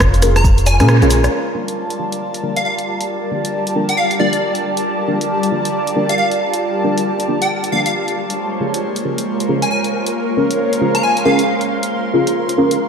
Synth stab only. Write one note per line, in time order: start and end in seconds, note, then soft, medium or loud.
0.22 0.41 C#4 medium
0.22 0.41 F4 medium
0.22 0.41 G#4 medium
0.22 0.41 A#4 medium
0.80 0.97 C#4 loud
0.80 0.97 F4 medium
0.80 0.97 G#4 medium
0.80 0.97 A#4 loud
1.02 1.19 C#4 medium
1.02 1.19 F4 medium
1.02 1.19 G#4 medium
1.02 1.19 A#4 loud
1.55 1.68 D4 medium
1.55 1.68 F4 medium
1.55 1.68 G4 medium
1.55 1.68 A#4 medium
1.99 2.18 D4 medium
1.99 2.18 F4 medium
1.99 2.18 G4 medium
1.99 2.18 A#4 medium
2.43 2.57 D4 medium
2.43 2.57 F4 medium
2.43 2.57 G4 medium
2.43 2.57 A#4 loud
3.31 3.45 D4 medium
3.31 3.45 F4 medium
3.31 3.45 G4 medium
3.31 3.45 A#4 medium
3.75 3.94 D4 medium
3.75 3.94 F4 medium
3.75 3.94 G4 medium
3.75 3.94 A#4 medium
4.19 4.33 D4 medium
4.19 4.33 F4 medium
4.19 4.33 G4 medium
4.19 4.33 A#4 loud
5.08 5.21 D4 medium
5.08 5.21 F4 medium
5.08 5.21 G4 medium
5.08 5.21 A#4 medium
5.52 5.71 D4 medium
5.52 5.71 F4 medium
5.52 5.71 G4 medium
5.52 5.71 A#4 medium
5.96 6.10 D4 medium
5.96 6.10 F4 medium
5.96 6.10 G4 medium
5.96 6.10 A#4 loud
6.84 6.98 D4 medium
6.84 6.98 F4 medium
6.84 6.98 G4 medium
6.84 6.98 A#4 medium
7.28 7.47 D4 medium
7.28 7.47 F4 medium
7.28 7.47 G4 medium
7.28 7.47 A#4 medium
7.72 7.86 D4 medium
7.72 7.86 F4 medium
7.72 7.86 G4 medium
7.72 7.86 A#4 loud
8.60 8.74 C#4 medium
8.60 8.74 F4 medium
8.60 8.74 G#4 medium
8.60 8.74 A#4 medium
9.05 9.24 C#4 medium
9.05 9.24 F4 medium
9.05 9.24 G#4 medium
9.05 9.24 A#4 medium
9.49 9.62 C#4 medium
9.49 9.62 F4 medium
9.49 9.62 G#4 medium
9.49 9.62 A#4 loud
10.37 10.51 C#4 medium
10.37 10.51 F4 medium
10.37 10.51 G#4 medium
10.37 10.51 A#4 medium
10.81 11.00 C#4 medium
10.81 11.00 F4 medium
10.81 11.00 G#4 medium
10.81 11.00 A#4 medium
11.25 11.39 C#4 medium
11.25 11.39 F4 medium
11.25 11.39 G#4 medium
11.25 11.39 A#4 loud
12.14 12.27 C#4 medium
12.14 12.27 F4 medium
12.14 12.27 G#4 medium
12.14 12.27 A#4 medium
12.58 12.76 C#4 medium
12.58 12.76 F4 medium
12.58 12.76 G#4 medium
12.58 12.76 A#4 medium